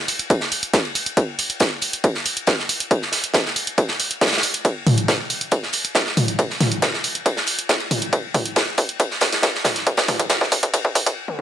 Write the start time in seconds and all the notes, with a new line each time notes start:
0.08 open hi-hat, ride
0.19 closed hi-hat
0.30 kick, closed hi-hat, ride
0.41 snare
0.52 open hi-hat, ride
0.63 closed hi-hat
0.73 kick, snare, closed hi-hat, ride
0.85 ride
0.95 open hi-hat, ride
1.06 closed hi-hat, ride
1.17 kick, closed hi-hat, ride
1.39 open hi-hat, ride
1.50 closed hi-hat
1.60 kick, snare, closed hi-hat, ride
1.82 open hi-hat, ride
1.93 closed hi-hat
2.04 kick, closed hi-hat, ride
2.15 snare
2.25 open hi-hat, ride
2.37 closed hi-hat
2.47 kick, snare, closed hi-hat, ride
2.59 snare
2.69 open hi-hat, ride
2.80 closed hi-hat
2.91 kick, closed hi-hat, ride
3.02 snare
3.12 snare, open hi-hat, ride
3.24 closed hi-hat
3.34 kick, snare, closed hi-hat, ride
3.46 snare
3.56 open hi-hat, ride
3.67 closed hi-hat
3.78 kick, closed hi-hat, ride
3.88 snare
4.00 open hi-hat, ride
4.11 closed hi-hat
4.21 kick, snare, closed hi-hat, ride
4.27 snare, ride
4.32 snare, ride
4.38 snare, ride
4.43 open hi-hat, ride
4.54 closed hi-hat, ride
4.65 kick, closed hi-hat, ride
4.87 open hi-hat, mid tom, ride
4.98 closed hi-hat
5.08 kick, snare, closed hi-hat, ride
5.30 open hi-hat, ride
5.41 closed hi-hat
5.51 kick, closed hi-hat, ride
5.63 snare
5.73 open hi-hat, ride
5.85 closed hi-hat
5.95 kick, snare, closed hi-hat, ride
6.07 snare
6.17 open hi-hat, mid tom, ride
6.28 closed hi-hat
6.39 kick, closed hi-hat, ride
6.50 snare
6.60 snare, open hi-hat, mid tom, ride
6.72 closed hi-hat
6.82 kick, snare, closed hi-hat, ride
6.94 snare
7.04 open hi-hat, ride
7.15 closed hi-hat
7.26 kick, closed hi-hat, ride
7.37 snare
7.47 open hi-hat, ride
7.59 closed hi-hat
7.69 kick, snare, closed hi-hat, ride
7.80 ride
7.91 open hi-hat, mid tom, ride
8.02 closed hi-hat, ride
8.13 kick, closed hi-hat, ride
8.34 kick, open hi-hat, mid tom, ride
8.46 closed hi-hat
8.56 kick, snare, closed hi-hat, ride
8.78 kick, open hi-hat, ride
8.89 closed hi-hat
9.00 kick, closed hi-hat, ride
9.11 snare
9.21 kick, snare, open hi-hat, ride
9.33 snare, closed hi-hat, ride
9.43 kick, snare, closed hi-hat, ride
9.55 snare
9.65 kick, snare, open hi-hat, mid tom, ride
9.76 snare, closed hi-hat
9.87 kick, closed hi-hat, ride
9.97 kick, snare, ride
10.08 kick, snare, open hi-hat, mid tom
10.19 kick, closed hi-hat, ride
10.30 kick, snare, closed hi-hat, ride
10.41 kick, snare
10.52 kick, open hi-hat, ride
10.63 kick, closed hi-hat
10.74 kick, closed hi-hat, ride
10.85 kick
10.95 kick, open hi-hat, ride
11.06 kick, closed hi-hat, ride
11.28 high tom